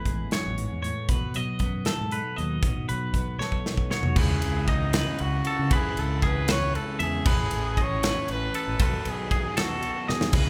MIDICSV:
0, 0, Header, 1, 7, 480
1, 0, Start_track
1, 0, Tempo, 513699
1, 1022, Time_signature, 6, 3, 24, 8
1, 9807, End_track
2, 0, Start_track
2, 0, Title_t, "Clean electric guitar"
2, 0, Program_c, 0, 27
2, 0, Note_on_c, 0, 71, 68
2, 293, Note_off_c, 0, 71, 0
2, 306, Note_on_c, 0, 73, 87
2, 760, Note_off_c, 0, 73, 0
2, 771, Note_on_c, 0, 73, 68
2, 1020, Note_off_c, 0, 73, 0
2, 1020, Note_on_c, 0, 71, 84
2, 1269, Note_off_c, 0, 71, 0
2, 1269, Note_on_c, 0, 75, 69
2, 1739, Note_on_c, 0, 69, 83
2, 1747, Note_off_c, 0, 75, 0
2, 1982, Note_off_c, 0, 69, 0
2, 1984, Note_on_c, 0, 71, 75
2, 2209, Note_off_c, 0, 71, 0
2, 2209, Note_on_c, 0, 75, 72
2, 2693, Note_off_c, 0, 75, 0
2, 2697, Note_on_c, 0, 71, 66
2, 3166, Note_off_c, 0, 71, 0
2, 3170, Note_on_c, 0, 73, 78
2, 3646, Note_off_c, 0, 73, 0
2, 3658, Note_on_c, 0, 73, 77
2, 3897, Note_off_c, 0, 73, 0
2, 3897, Note_on_c, 0, 71, 97
2, 4375, Note_off_c, 0, 71, 0
2, 4379, Note_on_c, 0, 75, 73
2, 4624, Note_off_c, 0, 75, 0
2, 4624, Note_on_c, 0, 71, 97
2, 5104, Note_off_c, 0, 71, 0
2, 5110, Note_on_c, 0, 69, 73
2, 5347, Note_off_c, 0, 69, 0
2, 5351, Note_on_c, 0, 71, 92
2, 5817, Note_off_c, 0, 71, 0
2, 5821, Note_on_c, 0, 68, 78
2, 6068, Note_off_c, 0, 68, 0
2, 6068, Note_on_c, 0, 71, 96
2, 6531, Note_off_c, 0, 71, 0
2, 6534, Note_on_c, 0, 76, 78
2, 6778, Note_off_c, 0, 76, 0
2, 6791, Note_on_c, 0, 71, 95
2, 7266, Note_off_c, 0, 71, 0
2, 7266, Note_on_c, 0, 75, 78
2, 7509, Note_off_c, 0, 75, 0
2, 7509, Note_on_c, 0, 71, 95
2, 7985, Note_off_c, 0, 71, 0
2, 7990, Note_on_c, 0, 69, 78
2, 8225, Note_off_c, 0, 69, 0
2, 8225, Note_on_c, 0, 71, 95
2, 8699, Note_off_c, 0, 71, 0
2, 8703, Note_on_c, 0, 68, 77
2, 8937, Note_off_c, 0, 68, 0
2, 8941, Note_on_c, 0, 69, 91
2, 9419, Note_off_c, 0, 69, 0
2, 9423, Note_on_c, 0, 75, 81
2, 9660, Note_off_c, 0, 75, 0
2, 9660, Note_on_c, 0, 71, 93
2, 9807, Note_off_c, 0, 71, 0
2, 9807, End_track
3, 0, Start_track
3, 0, Title_t, "Trumpet"
3, 0, Program_c, 1, 56
3, 3660, Note_on_c, 1, 66, 84
3, 3904, Note_on_c, 1, 68, 103
3, 3918, Note_off_c, 1, 66, 0
3, 4382, Note_on_c, 1, 63, 102
3, 4396, Note_off_c, 1, 68, 0
3, 4868, Note_on_c, 1, 66, 103
3, 4882, Note_off_c, 1, 63, 0
3, 5359, Note_on_c, 1, 68, 98
3, 5373, Note_off_c, 1, 66, 0
3, 5599, Note_on_c, 1, 69, 97
3, 5613, Note_off_c, 1, 68, 0
3, 5850, Note_on_c, 1, 71, 105
3, 5864, Note_off_c, 1, 69, 0
3, 6077, Note_off_c, 1, 71, 0
3, 6082, Note_on_c, 1, 73, 120
3, 6309, Note_on_c, 1, 69, 102
3, 6323, Note_off_c, 1, 73, 0
3, 6568, Note_on_c, 1, 68, 110
3, 6582, Note_off_c, 1, 69, 0
3, 7309, Note_on_c, 1, 73, 118
3, 7323, Note_off_c, 1, 68, 0
3, 7765, Note_off_c, 1, 73, 0
3, 7773, Note_on_c, 1, 71, 106
3, 8251, Note_on_c, 1, 69, 96
3, 8265, Note_off_c, 1, 71, 0
3, 8498, Note_on_c, 1, 68, 109
3, 8512, Note_off_c, 1, 69, 0
3, 8970, Note_on_c, 1, 66, 101
3, 8984, Note_off_c, 1, 68, 0
3, 9443, Note_on_c, 1, 68, 90
3, 9457, Note_off_c, 1, 66, 0
3, 9807, Note_off_c, 1, 68, 0
3, 9807, End_track
4, 0, Start_track
4, 0, Title_t, "Overdriven electric guitar"
4, 0, Program_c, 2, 29
4, 3889, Note_on_c, 2, 49, 96
4, 3908, Note_on_c, 2, 56, 105
4, 3918, Note_on_c, 2, 61, 114
4, 3924, Note_on_c, 2, 64, 108
4, 5319, Note_off_c, 2, 49, 0
4, 5331, Note_on_c, 2, 49, 107
4, 5332, Note_off_c, 2, 56, 0
4, 5336, Note_on_c, 2, 56, 97
4, 5350, Note_off_c, 2, 61, 0
4, 5353, Note_on_c, 2, 61, 108
4, 5358, Note_off_c, 2, 64, 0
4, 5362, Note_on_c, 2, 64, 102
4, 6761, Note_off_c, 2, 49, 0
4, 6764, Note_off_c, 2, 56, 0
4, 6777, Note_off_c, 2, 64, 0
4, 6784, Note_on_c, 2, 45, 99
4, 6791, Note_on_c, 2, 52, 97
4, 6793, Note_on_c, 2, 57, 104
4, 6798, Note_off_c, 2, 61, 0
4, 6802, Note_on_c, 2, 61, 110
4, 6808, Note_on_c, 2, 64, 104
4, 6809, Note_on_c, 2, 69, 115
4, 8206, Note_off_c, 2, 45, 0
4, 8209, Note_on_c, 2, 47, 99
4, 8210, Note_off_c, 2, 52, 0
4, 8211, Note_off_c, 2, 57, 0
4, 8217, Note_on_c, 2, 51, 101
4, 8219, Note_off_c, 2, 64, 0
4, 8219, Note_off_c, 2, 69, 0
4, 8223, Note_on_c, 2, 54, 103
4, 8225, Note_off_c, 2, 61, 0
4, 8229, Note_on_c, 2, 59, 114
4, 8236, Note_on_c, 2, 63, 112
4, 8239, Note_on_c, 2, 69, 111
4, 9639, Note_off_c, 2, 47, 0
4, 9641, Note_off_c, 2, 51, 0
4, 9644, Note_on_c, 2, 49, 103
4, 9646, Note_off_c, 2, 54, 0
4, 9650, Note_on_c, 2, 56, 104
4, 9654, Note_off_c, 2, 69, 0
4, 9656, Note_off_c, 2, 59, 0
4, 9659, Note_on_c, 2, 61, 106
4, 9664, Note_off_c, 2, 63, 0
4, 9668, Note_on_c, 2, 64, 100
4, 9678, Note_on_c, 2, 68, 110
4, 9807, Note_off_c, 2, 49, 0
4, 9807, Note_off_c, 2, 56, 0
4, 9807, Note_off_c, 2, 61, 0
4, 9807, Note_off_c, 2, 64, 0
4, 9807, Note_off_c, 2, 68, 0
4, 9807, End_track
5, 0, Start_track
5, 0, Title_t, "Clean electric guitar"
5, 0, Program_c, 3, 27
5, 0, Note_on_c, 3, 45, 69
5, 0, Note_on_c, 3, 52, 58
5, 0, Note_on_c, 3, 59, 54
5, 57, Note_on_c, 3, 56, 55
5, 286, Note_off_c, 3, 45, 0
5, 302, Note_on_c, 3, 42, 59
5, 535, Note_off_c, 3, 42, 0
5, 539, Note_on_c, 3, 44, 64
5, 781, Note_off_c, 3, 44, 0
5, 789, Note_on_c, 3, 45, 55
5, 1011, Note_off_c, 3, 52, 0
5, 1021, Note_off_c, 3, 56, 0
5, 1026, Note_off_c, 3, 45, 0
5, 1038, Note_on_c, 3, 47, 63
5, 1258, Note_on_c, 3, 54, 63
5, 1523, Note_off_c, 3, 59, 0
5, 1523, Note_on_c, 3, 59, 55
5, 1775, Note_on_c, 3, 69, 62
5, 1992, Note_on_c, 3, 63, 55
5, 2222, Note_off_c, 3, 54, 0
5, 2242, Note_on_c, 3, 54, 58
5, 2445, Note_off_c, 3, 54, 0
5, 2452, Note_off_c, 3, 69, 0
5, 2471, Note_off_c, 3, 47, 0
5, 2482, Note_on_c, 3, 47, 75
5, 2714, Note_on_c, 3, 54, 63
5, 2955, Note_off_c, 3, 59, 0
5, 2958, Note_on_c, 3, 59, 61
5, 3190, Note_on_c, 3, 69, 61
5, 3218, Note_off_c, 3, 63, 0
5, 3435, Note_on_c, 3, 63, 55
5, 3659, Note_off_c, 3, 54, 0
5, 3670, Note_on_c, 3, 54, 56
5, 3879, Note_off_c, 3, 54, 0
5, 3879, Note_off_c, 3, 69, 0
5, 3882, Note_off_c, 3, 63, 0
5, 3884, Note_off_c, 3, 59, 0
5, 3915, Note_off_c, 3, 47, 0
5, 9807, End_track
6, 0, Start_track
6, 0, Title_t, "Fingered electric bass"
6, 0, Program_c, 4, 33
6, 52, Note_on_c, 4, 33, 72
6, 239, Note_off_c, 4, 33, 0
6, 432, Note_on_c, 4, 33, 79
6, 612, Note_off_c, 4, 33, 0
6, 669, Note_on_c, 4, 40, 68
6, 851, Note_off_c, 4, 40, 0
6, 1016, Note_on_c, 4, 35, 77
6, 1110, Note_off_c, 4, 35, 0
6, 1279, Note_on_c, 4, 47, 82
6, 1365, Note_off_c, 4, 47, 0
6, 1496, Note_on_c, 4, 42, 75
6, 1775, Note_off_c, 4, 42, 0
6, 1873, Note_on_c, 4, 44, 76
6, 2054, Note_off_c, 4, 44, 0
6, 2224, Note_on_c, 4, 39, 76
6, 2408, Note_off_c, 4, 39, 0
6, 2451, Note_on_c, 4, 33, 83
6, 2549, Note_off_c, 4, 33, 0
6, 2710, Note_on_c, 4, 35, 80
6, 2893, Note_off_c, 4, 35, 0
6, 2927, Note_on_c, 4, 35, 75
6, 3118, Note_off_c, 4, 35, 0
6, 3289, Note_on_c, 4, 35, 88
6, 3480, Note_off_c, 4, 35, 0
6, 3526, Note_on_c, 4, 35, 74
6, 3718, Note_off_c, 4, 35, 0
6, 3882, Note_on_c, 4, 37, 106
6, 4075, Note_off_c, 4, 37, 0
6, 4148, Note_on_c, 4, 37, 98
6, 4699, Note_off_c, 4, 37, 0
6, 4867, Note_on_c, 4, 37, 85
6, 5050, Note_off_c, 4, 37, 0
6, 5225, Note_on_c, 4, 49, 89
6, 5317, Note_off_c, 4, 49, 0
6, 5333, Note_on_c, 4, 35, 102
6, 5522, Note_off_c, 4, 35, 0
6, 5587, Note_on_c, 4, 37, 91
6, 6321, Note_off_c, 4, 37, 0
6, 6542, Note_on_c, 4, 40, 93
6, 6726, Note_off_c, 4, 40, 0
6, 6787, Note_on_c, 4, 33, 111
6, 6969, Note_off_c, 4, 33, 0
6, 7022, Note_on_c, 4, 33, 101
6, 7573, Note_off_c, 4, 33, 0
6, 7748, Note_on_c, 4, 33, 93
6, 7929, Note_off_c, 4, 33, 0
6, 8108, Note_on_c, 4, 33, 91
6, 8197, Note_off_c, 4, 33, 0
6, 8215, Note_on_c, 4, 35, 96
6, 8401, Note_off_c, 4, 35, 0
6, 8464, Note_on_c, 4, 35, 92
6, 9198, Note_off_c, 4, 35, 0
6, 9431, Note_on_c, 4, 47, 92
6, 9610, Note_off_c, 4, 47, 0
6, 9651, Note_on_c, 4, 37, 102
6, 9807, Note_off_c, 4, 37, 0
6, 9807, End_track
7, 0, Start_track
7, 0, Title_t, "Drums"
7, 51, Note_on_c, 9, 36, 68
7, 56, Note_on_c, 9, 42, 58
7, 145, Note_off_c, 9, 36, 0
7, 149, Note_off_c, 9, 42, 0
7, 292, Note_on_c, 9, 42, 78
7, 300, Note_on_c, 9, 38, 92
7, 386, Note_off_c, 9, 42, 0
7, 393, Note_off_c, 9, 38, 0
7, 540, Note_on_c, 9, 42, 60
7, 633, Note_off_c, 9, 42, 0
7, 786, Note_on_c, 9, 42, 56
7, 880, Note_off_c, 9, 42, 0
7, 1015, Note_on_c, 9, 42, 73
7, 1016, Note_on_c, 9, 36, 102
7, 1108, Note_off_c, 9, 42, 0
7, 1110, Note_off_c, 9, 36, 0
7, 1254, Note_on_c, 9, 42, 62
7, 1347, Note_off_c, 9, 42, 0
7, 1487, Note_on_c, 9, 42, 57
7, 1494, Note_on_c, 9, 36, 73
7, 1580, Note_off_c, 9, 42, 0
7, 1587, Note_off_c, 9, 36, 0
7, 1729, Note_on_c, 9, 42, 72
7, 1737, Note_on_c, 9, 38, 99
7, 1823, Note_off_c, 9, 42, 0
7, 1830, Note_off_c, 9, 38, 0
7, 1976, Note_on_c, 9, 42, 53
7, 2069, Note_off_c, 9, 42, 0
7, 2226, Note_on_c, 9, 42, 52
7, 2319, Note_off_c, 9, 42, 0
7, 2454, Note_on_c, 9, 36, 106
7, 2455, Note_on_c, 9, 42, 72
7, 2547, Note_off_c, 9, 36, 0
7, 2548, Note_off_c, 9, 42, 0
7, 2700, Note_on_c, 9, 42, 58
7, 2793, Note_off_c, 9, 42, 0
7, 2932, Note_on_c, 9, 36, 68
7, 2939, Note_on_c, 9, 42, 60
7, 3025, Note_off_c, 9, 36, 0
7, 3032, Note_off_c, 9, 42, 0
7, 3183, Note_on_c, 9, 38, 56
7, 3276, Note_off_c, 9, 38, 0
7, 3289, Note_on_c, 9, 36, 53
7, 3382, Note_off_c, 9, 36, 0
7, 3421, Note_on_c, 9, 38, 73
7, 3515, Note_off_c, 9, 38, 0
7, 3527, Note_on_c, 9, 36, 62
7, 3621, Note_off_c, 9, 36, 0
7, 3653, Note_on_c, 9, 38, 76
7, 3747, Note_off_c, 9, 38, 0
7, 3766, Note_on_c, 9, 43, 77
7, 3859, Note_off_c, 9, 43, 0
7, 3887, Note_on_c, 9, 49, 124
7, 3889, Note_on_c, 9, 36, 115
7, 3981, Note_off_c, 9, 49, 0
7, 3982, Note_off_c, 9, 36, 0
7, 4128, Note_on_c, 9, 51, 86
7, 4222, Note_off_c, 9, 51, 0
7, 4369, Note_on_c, 9, 51, 76
7, 4370, Note_on_c, 9, 36, 80
7, 4463, Note_off_c, 9, 36, 0
7, 4463, Note_off_c, 9, 51, 0
7, 4608, Note_on_c, 9, 51, 103
7, 4615, Note_on_c, 9, 38, 117
7, 4701, Note_off_c, 9, 51, 0
7, 4709, Note_off_c, 9, 38, 0
7, 4845, Note_on_c, 9, 51, 77
7, 4938, Note_off_c, 9, 51, 0
7, 5088, Note_on_c, 9, 51, 77
7, 5182, Note_off_c, 9, 51, 0
7, 5331, Note_on_c, 9, 51, 103
7, 5335, Note_on_c, 9, 36, 112
7, 5425, Note_off_c, 9, 51, 0
7, 5429, Note_off_c, 9, 36, 0
7, 5578, Note_on_c, 9, 51, 83
7, 5672, Note_off_c, 9, 51, 0
7, 5814, Note_on_c, 9, 51, 76
7, 5815, Note_on_c, 9, 36, 77
7, 5907, Note_off_c, 9, 51, 0
7, 5909, Note_off_c, 9, 36, 0
7, 6054, Note_on_c, 9, 51, 100
7, 6061, Note_on_c, 9, 38, 117
7, 6147, Note_off_c, 9, 51, 0
7, 6155, Note_off_c, 9, 38, 0
7, 6308, Note_on_c, 9, 51, 77
7, 6401, Note_off_c, 9, 51, 0
7, 6540, Note_on_c, 9, 51, 75
7, 6633, Note_off_c, 9, 51, 0
7, 6781, Note_on_c, 9, 36, 122
7, 6782, Note_on_c, 9, 49, 105
7, 6874, Note_off_c, 9, 36, 0
7, 6876, Note_off_c, 9, 49, 0
7, 7015, Note_on_c, 9, 51, 89
7, 7109, Note_off_c, 9, 51, 0
7, 7262, Note_on_c, 9, 36, 77
7, 7267, Note_on_c, 9, 51, 76
7, 7355, Note_off_c, 9, 36, 0
7, 7360, Note_off_c, 9, 51, 0
7, 7504, Note_on_c, 9, 51, 110
7, 7511, Note_on_c, 9, 38, 111
7, 7597, Note_off_c, 9, 51, 0
7, 7605, Note_off_c, 9, 38, 0
7, 7738, Note_on_c, 9, 51, 83
7, 7832, Note_off_c, 9, 51, 0
7, 7982, Note_on_c, 9, 51, 84
7, 8076, Note_off_c, 9, 51, 0
7, 8216, Note_on_c, 9, 51, 117
7, 8220, Note_on_c, 9, 36, 116
7, 8310, Note_off_c, 9, 51, 0
7, 8313, Note_off_c, 9, 36, 0
7, 8459, Note_on_c, 9, 51, 78
7, 8552, Note_off_c, 9, 51, 0
7, 8699, Note_on_c, 9, 36, 80
7, 8700, Note_on_c, 9, 51, 81
7, 8793, Note_off_c, 9, 36, 0
7, 8793, Note_off_c, 9, 51, 0
7, 8942, Note_on_c, 9, 51, 101
7, 8949, Note_on_c, 9, 38, 110
7, 9035, Note_off_c, 9, 51, 0
7, 9043, Note_off_c, 9, 38, 0
7, 9180, Note_on_c, 9, 51, 85
7, 9274, Note_off_c, 9, 51, 0
7, 9428, Note_on_c, 9, 38, 69
7, 9522, Note_off_c, 9, 38, 0
7, 9541, Note_on_c, 9, 38, 100
7, 9634, Note_off_c, 9, 38, 0
7, 9649, Note_on_c, 9, 51, 107
7, 9649, Note_on_c, 9, 57, 100
7, 9654, Note_on_c, 9, 36, 120
7, 9743, Note_off_c, 9, 51, 0
7, 9743, Note_off_c, 9, 57, 0
7, 9748, Note_off_c, 9, 36, 0
7, 9807, End_track
0, 0, End_of_file